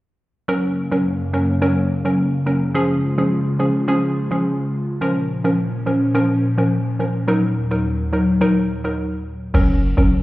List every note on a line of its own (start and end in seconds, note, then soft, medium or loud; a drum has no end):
0.48 2.73 F#2 medium
0.48 4.97 C#3 medium
0.48 0.63 F#3 medium
0.48 2.73 A#3 medium
0.48 0.63 C#4 medium
0.48 0.63 A#4 loud
0.92 1.05 F#3 medium
0.92 1.05 C#4 medium
0.92 1.05 A#4 medium
1.33 1.48 F#3 medium
1.33 1.48 C#4 medium
1.33 1.48 A#4 medium
1.62 1.76 F#3 medium
1.62 1.77 C#4 medium
1.62 1.77 A#4 loud
2.05 2.18 F#3 medium
2.05 2.18 C#4 medium
2.05 2.18 A#4 medium
2.46 2.61 F#3 medium
2.46 2.61 C#4 medium
2.46 2.61 A#4 medium
2.75 2.90 F3 medium
2.75 4.99 G#3 medium
2.75 2.90 C#4 medium
2.75 4.99 F4 medium
2.75 2.90 G#4 loud
3.18 3.31 F3 medium
3.18 3.31 C#4 medium
3.18 3.31 G#4 medium
3.59 3.74 F3 medium
3.59 3.75 C#4 medium
3.59 3.75 G#4 medium
3.88 4.03 F3 medium
3.88 4.03 C#4 medium
3.88 4.03 G#4 loud
4.31 4.44 F3 medium
4.31 4.45 C#4 medium
4.31 4.45 G#4 medium
5.01 9.50 A#2 medium
5.01 5.16 F3 medium
5.01 7.26 F3 medium
5.01 5.16 C#4 medium
5.01 7.26 C#4 medium
5.01 5.16 A#4 loud
5.44 5.58 F3 medium
5.44 5.58 C#4 medium
5.44 5.58 A#4 medium
5.86 6.01 F3 medium
5.86 6.01 C#4 medium
5.86 6.01 A#4 medium
6.14 6.29 F3 medium
6.14 6.29 C#4 medium
6.14 6.30 A#4 loud
6.58 6.71 F3 medium
6.58 6.71 C#4 medium
6.58 6.71 A#4 medium
6.99 7.14 F3 medium
6.99 7.14 C#4 medium
6.99 7.15 A#4 medium
7.28 9.52 D#2 medium
7.28 7.42 F#3 medium
7.28 9.52 F#3 medium
7.28 7.43 D#4 medium
7.28 7.43 A#4 loud
7.71 7.84 F#3 medium
7.71 7.84 D#4 medium
7.71 7.84 A#4 medium
8.13 8.27 F#3 medium
8.13 8.28 D#4 medium
8.13 8.28 A#4 medium
8.41 8.56 F#3 medium
8.41 8.56 D#4 medium
8.41 8.56 A#4 loud
8.84 8.97 F#3 medium
8.84 8.98 D#4 medium
8.84 8.98 A#4 medium
9.54 9.94 F#1 loud
9.54 9.69 F#3 medium
9.54 9.69 C#4 medium
9.54 9.69 A#4 loud
9.54 crash medium
9.97 10.23 F#1 loud
9.97 10.10 F#3 medium
9.97 10.11 C#4 medium
9.97 10.11 A#4 medium